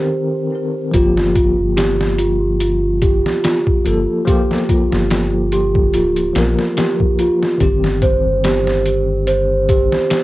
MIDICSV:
0, 0, Header, 1, 5, 480
1, 0, Start_track
1, 0, Key_signature, -2, "minor"
1, 0, Tempo, 833333
1, 540, Time_signature, 4, 2, 24, 8
1, 5895, End_track
2, 0, Start_track
2, 0, Title_t, "Celesta"
2, 0, Program_c, 0, 8
2, 0, Control_c, 0, 64, 127
2, 0, Note_on_c, 0, 67, 72
2, 0, Note_on_c, 0, 72, 98
2, 538, Note_on_c, 0, 65, 107
2, 548, Note_off_c, 0, 67, 0
2, 548, Control_c, 0, 64, 0
2, 552, Note_off_c, 0, 72, 0
2, 635, Control_c, 0, 64, 127
2, 768, Note_off_c, 0, 65, 0
2, 776, Note_on_c, 0, 65, 78
2, 903, Note_off_c, 0, 65, 0
2, 1018, Note_on_c, 0, 67, 108
2, 1144, Note_off_c, 0, 67, 0
2, 1258, Note_on_c, 0, 65, 93
2, 1488, Note_off_c, 0, 65, 0
2, 1498, Note_on_c, 0, 65, 81
2, 1624, Note_off_c, 0, 65, 0
2, 1737, Note_on_c, 0, 67, 96
2, 1863, Note_off_c, 0, 67, 0
2, 1978, Note_on_c, 0, 65, 92
2, 2208, Note_off_c, 0, 65, 0
2, 2219, Note_on_c, 0, 65, 72
2, 2344, Note_off_c, 0, 65, 0
2, 2460, Note_on_c, 0, 67, 99
2, 2585, Note_off_c, 0, 67, 0
2, 2702, Note_on_c, 0, 65, 101
2, 2930, Note_off_c, 0, 65, 0
2, 2943, Note_on_c, 0, 65, 81
2, 3066, Note_off_c, 0, 65, 0
2, 3183, Note_on_c, 0, 67, 102
2, 3306, Note_off_c, 0, 67, 0
2, 3423, Note_on_c, 0, 65, 98
2, 3650, Note_off_c, 0, 65, 0
2, 3902, Note_on_c, 0, 67, 103
2, 4026, Note_off_c, 0, 67, 0
2, 4144, Note_on_c, 0, 65, 96
2, 4371, Note_off_c, 0, 65, 0
2, 4381, Note_on_c, 0, 67, 87
2, 4387, Control_c, 0, 64, 0
2, 4471, Control_c, 0, 64, 127
2, 4506, Note_off_c, 0, 67, 0
2, 4621, Note_on_c, 0, 72, 104
2, 4745, Note_off_c, 0, 72, 0
2, 4859, Note_on_c, 0, 67, 103
2, 5089, Note_off_c, 0, 67, 0
2, 5103, Note_on_c, 0, 67, 74
2, 5226, Note_off_c, 0, 67, 0
2, 5340, Note_on_c, 0, 72, 100
2, 5465, Note_off_c, 0, 72, 0
2, 5581, Note_on_c, 0, 67, 103
2, 5809, Note_off_c, 0, 67, 0
2, 5819, Note_on_c, 0, 67, 80
2, 5895, Note_off_c, 0, 67, 0
2, 5895, End_track
3, 0, Start_track
3, 0, Title_t, "Tine electric piano"
3, 0, Program_c, 1, 4
3, 0, Control_c, 1, 64, 127
3, 0, Note_on_c, 1, 51, 77
3, 0, Note_on_c, 1, 60, 71
3, 0, Note_on_c, 1, 70, 85
3, 61, Note_off_c, 1, 60, 0
3, 68, Note_off_c, 1, 70, 0
3, 526, Note_on_c, 1, 53, 77
3, 538, Note_on_c, 1, 58, 69
3, 548, Control_c, 1, 64, 0
3, 550, Note_off_c, 1, 51, 0
3, 554, Note_on_c, 1, 67, 84
3, 641, Control_c, 1, 64, 127
3, 2187, Note_off_c, 1, 53, 0
3, 2193, Note_off_c, 1, 58, 0
3, 2201, Note_off_c, 1, 67, 0
3, 2216, Note_on_c, 1, 53, 77
3, 2221, Note_on_c, 1, 58, 68
3, 2228, Note_on_c, 1, 69, 85
3, 2324, Note_off_c, 1, 53, 0
3, 2327, Note_off_c, 1, 58, 0
3, 2330, Note_off_c, 1, 69, 0
3, 2449, Note_on_c, 1, 53, 104
3, 2461, Note_on_c, 1, 58, 90
3, 2475, Note_on_c, 1, 67, 107
3, 3628, Note_off_c, 1, 53, 0
3, 3634, Note_off_c, 1, 58, 0
3, 3641, Note_off_c, 1, 67, 0
3, 3647, Note_on_c, 1, 53, 80
3, 3664, Note_on_c, 1, 58, 76
3, 3677, Note_on_c, 1, 70, 88
3, 4347, Note_off_c, 1, 53, 0
3, 4356, Note_off_c, 1, 58, 0
3, 4362, Note_off_c, 1, 70, 0
3, 4366, Note_on_c, 1, 51, 79
3, 4381, Note_on_c, 1, 60, 71
3, 4386, Control_c, 1, 64, 0
3, 4395, Note_on_c, 1, 67, 79
3, 4487, Control_c, 1, 64, 127
3, 5895, Note_off_c, 1, 51, 0
3, 5895, Note_off_c, 1, 60, 0
3, 5895, Note_off_c, 1, 67, 0
3, 5895, End_track
4, 0, Start_track
4, 0, Title_t, "Analog synth bass"
4, 0, Program_c, 2, 38
4, 543, Note_on_c, 2, 31, 98
4, 888, Note_off_c, 2, 31, 0
4, 919, Note_on_c, 2, 31, 88
4, 1850, Note_off_c, 2, 31, 0
4, 2225, Note_on_c, 2, 31, 93
4, 2338, Note_off_c, 2, 31, 0
4, 2839, Note_on_c, 2, 31, 89
4, 3403, Note_off_c, 2, 31, 0
4, 3426, Note_on_c, 2, 26, 95
4, 3637, Note_off_c, 2, 26, 0
4, 3663, Note_on_c, 2, 34, 97
4, 3777, Note_off_c, 2, 34, 0
4, 4383, Note_on_c, 2, 31, 95
4, 4728, Note_off_c, 2, 31, 0
4, 4756, Note_on_c, 2, 31, 88
4, 5688, Note_off_c, 2, 31, 0
4, 5895, End_track
5, 0, Start_track
5, 0, Title_t, "Drums"
5, 539, Note_on_c, 9, 42, 82
5, 541, Note_on_c, 9, 36, 106
5, 597, Note_off_c, 9, 42, 0
5, 598, Note_off_c, 9, 36, 0
5, 676, Note_on_c, 9, 38, 49
5, 733, Note_off_c, 9, 38, 0
5, 780, Note_on_c, 9, 36, 82
5, 780, Note_on_c, 9, 42, 67
5, 838, Note_off_c, 9, 36, 0
5, 838, Note_off_c, 9, 42, 0
5, 1021, Note_on_c, 9, 42, 87
5, 1025, Note_on_c, 9, 38, 113
5, 1078, Note_off_c, 9, 42, 0
5, 1082, Note_off_c, 9, 38, 0
5, 1157, Note_on_c, 9, 38, 53
5, 1214, Note_off_c, 9, 38, 0
5, 1259, Note_on_c, 9, 42, 67
5, 1317, Note_off_c, 9, 42, 0
5, 1500, Note_on_c, 9, 42, 93
5, 1558, Note_off_c, 9, 42, 0
5, 1738, Note_on_c, 9, 42, 67
5, 1741, Note_on_c, 9, 36, 98
5, 1796, Note_off_c, 9, 42, 0
5, 1798, Note_off_c, 9, 36, 0
5, 1878, Note_on_c, 9, 38, 52
5, 1936, Note_off_c, 9, 38, 0
5, 1981, Note_on_c, 9, 42, 90
5, 1985, Note_on_c, 9, 38, 116
5, 2039, Note_off_c, 9, 42, 0
5, 2043, Note_off_c, 9, 38, 0
5, 2113, Note_on_c, 9, 36, 83
5, 2171, Note_off_c, 9, 36, 0
5, 2221, Note_on_c, 9, 42, 64
5, 2278, Note_off_c, 9, 42, 0
5, 2461, Note_on_c, 9, 36, 107
5, 2462, Note_on_c, 9, 42, 82
5, 2519, Note_off_c, 9, 36, 0
5, 2520, Note_off_c, 9, 42, 0
5, 2597, Note_on_c, 9, 38, 41
5, 2655, Note_off_c, 9, 38, 0
5, 2701, Note_on_c, 9, 36, 91
5, 2702, Note_on_c, 9, 42, 67
5, 2759, Note_off_c, 9, 36, 0
5, 2759, Note_off_c, 9, 42, 0
5, 2835, Note_on_c, 9, 38, 52
5, 2893, Note_off_c, 9, 38, 0
5, 2940, Note_on_c, 9, 42, 88
5, 2944, Note_on_c, 9, 38, 111
5, 2997, Note_off_c, 9, 42, 0
5, 3001, Note_off_c, 9, 38, 0
5, 3179, Note_on_c, 9, 42, 66
5, 3237, Note_off_c, 9, 42, 0
5, 3312, Note_on_c, 9, 36, 96
5, 3370, Note_off_c, 9, 36, 0
5, 3419, Note_on_c, 9, 42, 95
5, 3477, Note_off_c, 9, 42, 0
5, 3550, Note_on_c, 9, 42, 43
5, 3608, Note_off_c, 9, 42, 0
5, 3659, Note_on_c, 9, 42, 73
5, 3663, Note_on_c, 9, 38, 102
5, 3717, Note_off_c, 9, 42, 0
5, 3721, Note_off_c, 9, 38, 0
5, 3794, Note_on_c, 9, 38, 46
5, 3852, Note_off_c, 9, 38, 0
5, 3900, Note_on_c, 9, 42, 92
5, 3904, Note_on_c, 9, 38, 124
5, 3958, Note_off_c, 9, 42, 0
5, 3962, Note_off_c, 9, 38, 0
5, 4032, Note_on_c, 9, 36, 88
5, 4090, Note_off_c, 9, 36, 0
5, 4140, Note_on_c, 9, 42, 68
5, 4198, Note_off_c, 9, 42, 0
5, 4278, Note_on_c, 9, 38, 44
5, 4335, Note_off_c, 9, 38, 0
5, 4380, Note_on_c, 9, 42, 85
5, 4381, Note_on_c, 9, 36, 99
5, 4438, Note_off_c, 9, 36, 0
5, 4438, Note_off_c, 9, 42, 0
5, 4516, Note_on_c, 9, 38, 51
5, 4574, Note_off_c, 9, 38, 0
5, 4620, Note_on_c, 9, 36, 84
5, 4620, Note_on_c, 9, 42, 67
5, 4677, Note_off_c, 9, 42, 0
5, 4678, Note_off_c, 9, 36, 0
5, 4862, Note_on_c, 9, 42, 87
5, 4866, Note_on_c, 9, 38, 116
5, 4919, Note_off_c, 9, 42, 0
5, 4923, Note_off_c, 9, 38, 0
5, 4996, Note_on_c, 9, 38, 54
5, 5053, Note_off_c, 9, 38, 0
5, 5101, Note_on_c, 9, 42, 68
5, 5159, Note_off_c, 9, 42, 0
5, 5340, Note_on_c, 9, 42, 91
5, 5398, Note_off_c, 9, 42, 0
5, 5581, Note_on_c, 9, 36, 93
5, 5581, Note_on_c, 9, 42, 65
5, 5638, Note_off_c, 9, 42, 0
5, 5639, Note_off_c, 9, 36, 0
5, 5716, Note_on_c, 9, 38, 54
5, 5774, Note_off_c, 9, 38, 0
5, 5820, Note_on_c, 9, 42, 85
5, 5824, Note_on_c, 9, 38, 119
5, 5878, Note_off_c, 9, 42, 0
5, 5882, Note_off_c, 9, 38, 0
5, 5895, End_track
0, 0, End_of_file